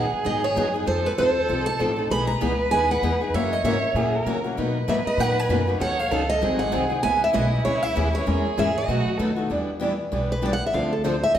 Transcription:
Already playing: upright bass A#2, violin G#4, steel-string acoustic guitar F#5
0.13 muted upright bass stroke
0.24 upright bass G#2, steel-string acoustic guitar D#3 F#3 B3 D#4 G#4 D#5
0.44 steel-string acoustic guitar C#5
0.56 upright bass F#2, steel-string acoustic guitar D#3 F#3 B3 D#4 G#4
0.74 steel-string acoustic guitar B3 D#4 G#4
0.87 upright bass F2, steel-string acoustic guitar F3 C4 D#4 A4 C5, violin A4
1.06 steel-string acoustic guitar B4
1.18 upright bass D#2, steel-string acoustic guitar F3 C4 D#4 A4 C5
1.49 upright bass C2, steel-string acoustic guitar F3 C4 D#4 A4
1.66 steel-string acoustic guitar A5
1.79 upright bass A1, steel-string acoustic guitar F3 C4 D#4 A4
1.97 steel-string acoustic guitar C4 D#4 A4
2.10 upright bass B1, steel-string acoustic guitar E3 G#3 B3 D#4 G#4 B5, violin B4
2.27 steel-string acoustic guitar A#5
2.41 upright bass C#2, steel-string acoustic guitar E3 G#3 B3 D#4 G#4
2.71 upright bass D#2, steel-string acoustic guitar E3 G#3 B3 D#4 G#4 G#5
2.91 steel-string acoustic guitar F#5
3.03 upright bass E2, steel-string acoustic guitar E3 G#3 B3 D#4 G#4
3.21 steel-string acoustic guitar B3 D#4 G#4
3.34 upright bass F#2, steel-string acoustic guitar C#3 E3 F#3 A#3 C#4 E4 F#4 A#4 E5, violin C#5
3.53 steel-string acoustic guitar D#5
3.64 upright bass G#2, steel-string acoustic guitar C#3 E3 F#3 A#3 C#4 E4 F#4 A#4 E5
3.94 upright bass A#2, steel-string acoustic guitar C#3 E3 F#3 A#3 C#4 E4 F#4 A#4, violin G#4
4.16 violin A#4
4.26 upright bass C#3, steel-string acoustic guitar C#3 E3 F#3 A#3 C#4 E4 F#4 A#4
4.44 steel-string acoustic guitar A#3 C#4 F#4
4.57 steel-string acoustic guitar B2 D#3 F#3 A#3 B3 D#4 F#4 A#4, upright bass B2, violin B4
4.88 upright bass G#2, steel-string acoustic guitar B2 D#3 F#3 A#3 B3 D#4 F#4 A#4 E5
5.06 steel-string acoustic guitar D#5, muted upright bass stroke
5.17 upright bass A#2, steel-string acoustic guitar B2 D#3 F#3 A#3 B3 D#4 F#4 A#4 F#5
5.39 steel-string acoustic guitar G#5
5.49 upright bass F#2, steel-string acoustic guitar B2 D#3 F#3 A#3 B3 D#4 F#4 A#4
5.67 steel-string acoustic guitar A#3 D#4 F#4
5.80 upright bass D#2, steel-string acoustic guitar D#3 F#3 C#4 D#4 A4 F#5, violin C#5
5.99 steel-string acoustic guitar F5
6.11 upright bass C#2, steel-string acoustic guitar D#3 F#3 C#4 D#4 A4, violin A4
6.30 steel-string acoustic guitar D#5
6.41 upright bass G#1, steel-string acoustic guitar D#3 F#3 C4 D#4 G#4, violin G#4
6.59 steel-string acoustic guitar F#5
6.72 upright bass C2, steel-string acoustic guitar D#3 F#3 C4 D#4 G#4
6.90 steel-string acoustic guitar C4 D#4 G#4
7.03 upright bass C#2, steel-string acoustic guitar C#3 E3 G#3 B3 C#4 E4 G#4 G#5, violin E4
7.24 steel-string acoustic guitar E5
7.33 upright bass B1, steel-string acoustic guitar C#3 E3 G#3 B3 C#4 E4 G#4 D#5
7.65 upright bass C#2, steel-string acoustic guitar C#3 E3 G#3 B3 C#4 E4 G#4 C#5
7.83 steel-string acoustic guitar E5
7.95 upright bass D#2, steel-string acoustic guitar C#3 E3 G#3 B3 C#4 E4 G#4
8.13 steel-string acoustic guitar B3 C#4 G#4 C#5
8.26 upright bass E2, steel-string acoustic guitar E3 G#3 C#4 G#4 A#4, violin G#4
8.58 upright bass G#2, steel-string acoustic guitar E3 G#3 C#4 G#4 A#4 E5
8.78 steel-string acoustic guitar D#5
8.88 upright bass B2, steel-string acoustic guitar B2 F#3 A3 D#4 F#4 B4, violin F#4
9.06 muted upright bass stroke
9.17 steel-string acoustic guitar B2 F#3 A3 D#4 F#4 B4, upright bass D#3, violin A4
9.36 steel-string acoustic guitar A3 D#4 F#4
9.50 upright bass E2, steel-string acoustic guitar E3 G3 B3 D4 E4 G4 B4
9.80 steel-string acoustic guitar E3 G3 B3 D4 E4 G4 B4
10.12 upright bass B1, steel-string acoustic guitar E3 G3 B3 D4 E4 G4 B4
10.32 steel-string acoustic guitar B4
10.42 steel-string acoustic guitar E3 G3 B3 D4 E4 G4 B4 D5
10.53 steel-string acoustic guitar F#5
10.66 steel-string acoustic guitar E5
10.73 upright bass D2, steel-string acoustic guitar D3 F3 C4 D4 A4 F5
10.93 steel-string acoustic guitar A4
11.04 steel-string acoustic guitar D3 F3 C4 D4 A4 C5
11.23 steel-string acoustic guitar E5
11.35 upright bass G1, steel-string acoustic guitar F3 B3 D#4 D#5

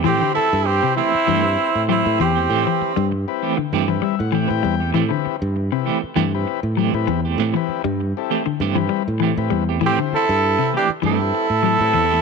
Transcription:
0.04 fingered electric bass A2, clean electric guitar E3 A3 C4 G4, tenor saxophone C4
0.08 trombone G4
0.21 clean electric guitar D3, transistor combo organ C4 E4 G4 B4, muted clean electric guitar stroke
0.35 tenor saxophone E4, trombone A4, muted fingered electric bass stroke
0.53 fingered electric bass G2
0.65 tenor saxophone C4, trombone G4, muted clean electric guitar stroke
0.82 clean electric guitar C3, transistor combo organ C4 E4 G4 B4
0.96 clean electric guitar E3 A3 C4 G4, tenor saxophone C4, trombone E4
1.13 muted clean electric guitar stroke, muted fingered electric bass stroke
1.26 fingered electric bass G2, clean electric guitar E3 A3 C4 G4
1.43 transistor combo organ C4 E4 G4 B4, muted clean electric guitar stroke
1.58 muted clean electric guitar stroke
1.75 fingered electric bass A2
1.88 clean electric guitar E3 F#3 A3 C4 G4, tenor saxophone C4, trombone E4
2.05 fingered electric bass A2, transistor combo organ C4 E4 G4 B4, muted clean electric guitar stroke
2.19 fingered electric bass E2, clean electric guitar E3, tenor saxophone C4, trombone G4, muted clean electric guitar stroke
2.36 clean electric guitar A3 C4 G4
2.50 fingered electric bass A2, clean electric guitar E3 A3 C4 G4
2.66 clean electric guitar E3, transistor combo organ C4 E4 G4 B4, muted clean electric guitar stroke
2.81 muted clean electric guitar stroke, muted fingered electric bass stroke
2.96 fingered electric bass G2, clean electric guitar G3
3.12 muted clean electric guitar stroke
3.28 transistor combo organ C4 E4 G4 B4
3.42 clean electric guitar E3 A3 C4 G4
3.57 clean electric guitar D3, muted clean electric guitar stroke, muted fingered electric bass stroke
3.73 fingered electric bass G2, clean electric guitar E3 A3 C4 G4
3.88 clean electric guitar E3, transistor combo organ C4 E4 G4 B4, muted clean electric guitar stroke
4.02 clean electric guitar G3, transistor combo organ E5, muted clean electric guitar stroke
4.19 fingered electric bass A2, transistor combo organ F#5
4.32 clean electric guitar E3 A3 C4 G4, transistor combo organ G5
4.47 fingered electric bass A2, transistor combo organ C4 E4 G4 B4, muted clean electric guitar stroke
4.63 fingered electric bass E2, clean electric guitar G3, muted clean electric guitar stroke
4.80 clean electric guitar A3 C4 G4
4.94 fingered electric bass A2, clean electric guitar E3 A3 C4 G4
5.09 clean electric guitar D3, transistor combo organ C4 E4 G4 B4
5.25 muted clean electric guitar stroke, muted fingered electric bass stroke
5.42 fingered electric bass G2
5.56 muted clean electric guitar stroke
5.72 clean electric guitar C3, transistor combo organ C4 E4 G4 B4
5.85 clean electric guitar E3 A3 C4 G4
6.03 muted fingered electric bass stroke
6.16 fingered electric bass G2, clean electric guitar E3 A3 C4 G4
6.33 transistor combo organ C4 E4 G4 B4, muted clean electric guitar stroke
6.47 muted clean electric guitar stroke
6.63 fingered electric bass A2
6.77 clean electric guitar E3 F#3 A3 C4 G4
6.94 fingered electric bass A2, transistor combo organ C4 E4 G4 B4
7.07 fingered electric bass E2, clean electric guitar E3, muted clean electric guitar stroke
7.25 clean electric guitar A3 C4 G4
7.38 fingered electric bass A2, clean electric guitar E3 A3 C4 G4
7.54 clean electric guitar E3, transistor combo organ C4 E4 G4 B4, muted clean electric guitar stroke
7.68 muted fingered electric bass stroke, muted clean electric guitar stroke
7.84 fingered electric bass G2, clean electric guitar G3
8.00 muted clean electric guitar stroke
8.17 transistor combo organ C4 E4 G4 A4
8.30 clean electric guitar E3 A3 C4 G4
8.46 clean electric guitar D3, muted fingered electric bass stroke, muted clean electric guitar stroke
8.60 fingered electric bass G2, clean electric guitar E3 A3 C4 G4
8.75 clean electric guitar E3, transistor combo organ C4 E4 G4 B4, muted clean electric guitar stroke
8.89 clean electric guitar G3, muted clean electric guitar stroke
9.08 fingered electric bass A2
9.20 clean electric guitar E3 A3 C4 G4
9.37 fingered electric bass A2, transistor combo organ C4 E4 G4 B4, muted clean electric guitar stroke
9.50 fingered electric bass E2, clean electric guitar G3, muted clean electric guitar stroke
9.69 clean electric guitar A3 C4 G4
9.81 fingered electric bass A2, clean electric guitar E3 A3 C4 G4
9.86 tenor saxophone C4, trombone G4
9.99 clean electric guitar D3, transistor combo organ C4 E4 G4 C5, muted clean electric guitar stroke
10.13 tenor saxophone E4, trombone A4, muted fingered electric bass stroke, muted clean electric guitar stroke
10.29 fingered electric bass G2
10.43 muted clean electric guitar stroke
10.58 clean electric guitar C3, transistor combo organ C4 E4 G4 B4
10.73 clean electric guitar E3 A3 C4 G4, trombone G4
10.78 tenor saxophone D4
10.89 muted clean electric guitar stroke, muted fingered electric bass stroke
11.02 fingered electric bass G2, clean electric guitar E3 A3 C4 G4
11.06 tenor saxophone E4, trombone A4
11.20 transistor combo organ C4 E4 G4 B4, muted clean electric guitar stroke
11.34 muted clean electric guitar stroke
11.50 fingered electric bass A2
11.63 clean electric guitar E3 F#3 A3 C4 G4
11.80 fingered electric bass A2, transistor combo organ C4 E4 G4 B4, muted clean electric guitar stroke
11.94 fingered electric bass E2, clean electric guitar E3
12.10 clean electric guitar A3 C4 G4

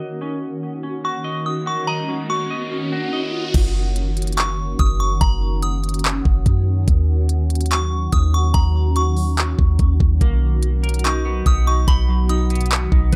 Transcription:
Already playing: ambient pad D#3 A#3 C#4 F#4, clean electric guitar A#3 F#4 D#5
0.21 ambient pad C#4, clean electric guitar C#4, riser
0.83 clean electric guitar C#4
1.04 clean electric guitar F#4, synth bell C#6
1.24 clean electric guitar D#5
1.46 synth bell D#6
1.66 clean electric guitar F#4, synth bell C#6
1.87 clean electric guitar D#5, synth bell A#5
2.08 clean electric guitar C#4
2.29 clean electric guitar F#4, synth bell C#6
2.50 clean electric guitar D#5
2.71 clean electric guitar C#4
2.92 clean electric guitar F#4
3.13 clean electric guitar D#5
3.54 808-style bass F#1, ambient pad D#3 A#3 C#4 F#4, kick, closed hi-hat, crash
3.96 closed hi-hat
4.17 closed hi-hat
4.22 closed hi-hat
4.27 closed hi-hat
4.33 closed hi-hat
4.37 synth bell C#6, clap, closed hi-hat
4.79 808-style bass F#1, synth bell D#6, kick, closed hi-hat
5.00 synth bell C#6
5.21 808-style bass F#1, synth bell A#5, kick, closed hi-hat
5.62 synth bell D#6, closed hi-hat
5.84 closed hi-hat
5.89 closed hi-hat
5.94 closed hi-hat
5.99 closed hi-hat
6.04 clap, closed hi-hat
6.25 808-style bass F#1, kick
6.46 808-style bass F#2, kick, closed hi-hat
6.88 808-style bass D#2, ambient pad F#3, kick, closed hi-hat
7.29 closed hi-hat
7.50 closed hi-hat
7.55 closed hi-hat
7.61 closed hi-hat
7.66 closed hi-hat
7.71 synth bell C#6, clap, closed hi-hat
8.12 808-style bass D#2, synth bell D#6, kick, closed hi-hat
8.34 synth bell C#6
8.54 808-style bass D#2, synth bell A#5, kick, closed hi-hat
8.96 synth bell C#6, closed hi-hat
9.17 open hi-hat
9.38 clap, closed hi-hat
9.59 808-style bass D#2, kick
9.79 808-style bass D#2, kick, closed hi-hat
10.00 808-style bass D#2, kick
10.21 808-style bass B1, ambient pad B2 D#3 F#4, clean electric guitar A#3, kick, closed hi-hat
10.63 closed hi-hat
10.83 clean electric guitar A#4, closed hi-hat
10.89 closed hi-hat
10.94 closed hi-hat
10.99 closed hi-hat
11.04 clean electric guitar D#4, synth bell C#6, clap, closed hi-hat
11.25 clean electric guitar B3
11.46 808-style bass B1, synth bell D#6, kick, closed hi-hat
11.67 clean electric guitar D#4, synth bell C#6
11.88 808-style bass B1, synth bell B5, clean electric guitar B5, kick, closed hi-hat
12.09 clean electric guitar F#3
12.29 clean electric guitar D#4, synth bell D#6, closed hi-hat
12.50 clean electric guitar B3, closed hi-hat
12.55 closed hi-hat
12.61 closed hi-hat
12.66 closed hi-hat
12.71 clap, closed hi-hat
12.92 808-style bass B1, clean electric guitar D#4, kick
13.12 808-style bass B2, clean electric guitar B4, kick, closed hi-hat

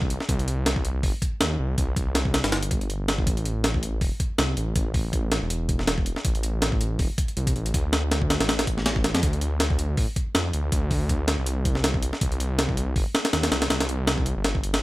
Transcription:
Already playing: detuned saw bass C2
0.02 kick
0.10 closed hi-hat
0.20 snare
0.29 detuned saw bass C2, kick, closed hi-hat
0.39 closed hi-hat
0.48 closed hi-hat
0.66 snare, closed hi-hat
0.76 kick
0.85 closed hi-hat
1.03 detuned saw bass G1, kick, open hi-hat
1.22 kick, closed hi-hat
1.40 detuned saw bass D#2, snare, closed hi-hat
1.59 detuned saw bass C2
1.78 detuned saw bass C2, kick, closed hi-hat
1.96 kick, closed hi-hat
2.15 snare, closed hi-hat
2.25 kick
2.34 snare, closed hi-hat
2.44 detuned saw bass G1, snare, closed hi-hat
2.52 snare, closed hi-hat
2.63 closed hi-hat
2.71 kick, closed hi-hat
2.81 closed hi-hat
2.90 closed hi-hat
3.08 detuned saw bass G1, snare, closed hi-hat
3.18 detuned saw bass G1, kick
3.27 detuned saw bass A1, kick, closed hi-hat
3.37 closed hi-hat
3.45 closed hi-hat
3.64 snare, closed hi-hat
3.74 kick
3.83 closed hi-hat
4.01 detuned saw bass E1, kick, open hi-hat
4.20 kick, closed hi-hat
4.38 detuned saw bass C2, snare, closed hi-hat
4.57 detuned saw bass A1, closed hi-hat
4.76 detuned saw bass A1, kick, closed hi-hat
4.94 kick, open hi-hat
5.13 kick, closed hi-hat
5.32 snare, closed hi-hat
5.42 detuned saw bass E1
5.50 closed hi-hat
5.69 kick, closed hi-hat
5.79 snare
5.87 snare, closed hi-hat
5.98 kick
6.06 closed hi-hat
6.16 snare
6.25 detuned saw bass A1, kick, closed hi-hat
6.35 closed hi-hat
6.43 closed hi-hat
6.62 snare, closed hi-hat
6.72 kick
6.81 closed hi-hat
6.99 detuned saw bass E1, kick, open hi-hat
7.18 kick, closed hi-hat
7.28 closed hi-hat
7.37 detuned saw bass C2, closed hi-hat
7.47 kick, closed hi-hat
7.55 detuned saw bass A1, closed hi-hat
7.66 closed hi-hat
7.74 detuned saw bass D2, kick, closed hi-hat
7.93 snare, closed hi-hat
8.11 snare, closed hi-hat
8.22 kick
8.30 snare, closed hi-hat
8.40 detuned saw bass A1, snare, closed hi-hat
8.49 snare, closed hi-hat
8.59 snare, closed hi-hat
8.67 kick, closed hi-hat
8.78 snare
8.86 snare, closed hi-hat
8.96 kick
9.04 detuned saw bass A1, snare, closed hi-hat
9.14 detuned saw bass F2, snare, closed hi-hat
9.23 detuned saw bass D2, kick, closed hi-hat
9.33 closed hi-hat
9.41 closed hi-hat
9.60 snare, closed hi-hat
9.70 kick
9.79 closed hi-hat
9.97 detuned saw bass A1, kick, open hi-hat
10.16 kick, closed hi-hat
10.35 detuned saw bass F2, snare, closed hi-hat
10.53 detuned saw bass D2, closed hi-hat
10.72 detuned saw bass D2, kick, closed hi-hat
10.91 kick, open hi-hat
11.09 kick, closed hi-hat
11.28 snare, closed hi-hat
11.38 detuned saw bass C2
11.46 closed hi-hat
11.65 kick, closed hi-hat
11.75 snare
11.84 snare, closed hi-hat
11.94 kick
12.03 closed hi-hat
12.13 snare
12.21 detuned saw bass C2, kick, closed hi-hat
12.32 closed hi-hat
12.40 closed hi-hat
12.59 snare, closed hi-hat
12.69 kick
12.77 closed hi-hat
12.96 detuned saw bass G1, kick, open hi-hat
13.15 snare, closed hi-hat
13.25 snare, closed hi-hat
13.33 detuned saw bass D#2, snare, closed hi-hat
13.43 snare, closed hi-hat
13.52 detuned saw bass C2, snare, closed hi-hat
13.62 snare, closed hi-hat
13.70 detuned saw bass C2, snare, closed hi-hat
13.80 snare, closed hi-hat
13.89 closed hi-hat
14.07 snare, closed hi-hat
14.18 kick
14.26 closed hi-hat
14.36 detuned saw bass G1
14.44 snare, closed hi-hat
14.55 kick
14.64 closed hi-hat
14.74 snare, closed hi-hat

